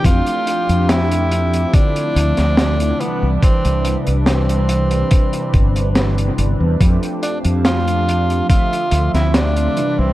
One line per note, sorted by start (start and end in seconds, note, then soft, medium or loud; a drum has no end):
0.03 0.20 F2 loud
0.03 1.65 F3 medium
0.03 1.65 A3 medium
0.03 1.65 C4 medium
0.03 1.66 D4 medium
0.03 0.91 F4 loud
0.03 1.72 G4 medium
0.03 1.66 G4 medium
0.03 1.72 G5 medium
0.03 1.72 A5 medium
0.03 8.45 D6 medium
0.03 kick loud
0.03 closed hi-hat loud
0.26 closed hi-hat medium
0.47 closed hi-hat medium
0.69 1.64 F2 medium
0.69 closed hi-hat medium
0.89 1.75 E4 loud
0.89 snare loud
0.89 closed hi-hat medium
1.12 closed hi-hat medium
1.32 closed hi-hat medium
1.54 closed hi-hat medium
1.72 2.91 D3 medium
1.72 2.92 F3 medium
1.72 2.99 F3 medium
1.72 2.92 A3 medium
1.72 2.92 C4 medium
1.72 3.02 D4 loud
1.72 2.93 E4 medium
1.72 6.77 E5 medium
1.72 4.66 A5 medium
1.72 kick loud
1.72 closed hi-hat medium
1.96 closed hi-hat medium
2.16 2.32 D2 medium
2.16 closed hi-hat medium
2.37 2.91 D2 medium
2.37 snare soft
2.37 closed hi-hat medium
2.57 snare loud
2.57 closed hi-hat loud
2.80 closed hi-hat medium
2.99 6.72 C3 medium
2.99 6.72 E3 medium
2.99 6.72 G3 medium
2.99 3.30 B3 medium
2.99 6.73 D4 loud
2.99 6.76 B4 medium
2.99 6.73 B4 medium
2.99 closed hi-hat medium
3.22 3.37 C2 medium
3.42 3.97 C4 loud
3.42 muted fretless electric bass stroke soft
3.42 kick loud
3.42 closed hi-hat loud
3.65 3.94 C2 medium
3.65 closed hi-hat medium
3.85 closed hi-hat medium
4.07 5.02 C2 medium
4.07 closed hi-hat medium
4.26 5.92 C4 medium
4.26 snare loud
4.26 closed hi-hat loud
4.49 closed hi-hat medium
4.69 6.78 B5 medium
4.69 closed hi-hat medium
4.91 closed hi-hat soft
5.11 kick loud
5.11 closed hi-hat loud
5.33 closed hi-hat medium
5.54 6.29 G1 medium
5.54 kick loud
5.54 closed hi-hat medium
5.76 closed hi-hat medium
5.95 snare loud
5.95 closed hi-hat medium
6.18 closed hi-hat medium
6.38 6.54 G1 loud
6.38 closed hi-hat medium
6.60 6.75 E2 loud
6.79 6.96 F2 loud
6.79 8.41 F3 medium
6.79 8.41 A3 medium
6.79 8.41 C4 medium
6.79 8.42 D4 medium
6.79 8.48 G4 medium
6.79 8.42 G4 medium
6.79 8.48 F5 medium
6.79 8.48 A5 medium
6.79 kick loud
6.79 closed hi-hat loud
7.03 closed hi-hat medium
7.23 7.39 D4 medium
7.23 closed hi-hat medium
7.45 8.40 F2 medium
7.45 closed hi-hat medium
7.65 8.46 F4 loud
7.65 snare loud
7.65 closed hi-hat loud
7.88 closed hi-hat medium
8.09 closed hi-hat medium
8.30 closed hi-hat medium
8.48 9.68 D3 medium
8.48 9.68 F3 medium
8.48 9.75 F3 medium
8.48 9.68 A3 medium
8.48 9.69 C4 medium
8.48 9.10 F4 loud
8.48 10.13 E5 medium
8.48 9.69 E5 medium
8.48 9.75 C6 medium
8.48 10.13 D6 medium
8.48 kick loud
8.48 closed hi-hat loud
8.73 closed hi-hat medium
8.91 9.07 D2 medium
8.91 closed hi-hat medium
9.14 9.67 D2 loud
9.14 9.36 E4 loud
9.14 snare soft
9.14 closed hi-hat medium
9.34 10.00 D4 loud
9.34 snare loud
9.34 closed hi-hat medium
9.56 closed hi-hat medium
9.75 10.13 C3 medium
9.75 10.13 E3 medium
9.75 10.13 G3 medium
9.75 10.13 D4 loud
9.75 10.13 B4 medium
9.75 10.13 D5 medium
9.75 10.13 G5 medium
9.75 closed hi-hat medium
9.98 10.13 C2 medium
9.98 10.13 C4 medium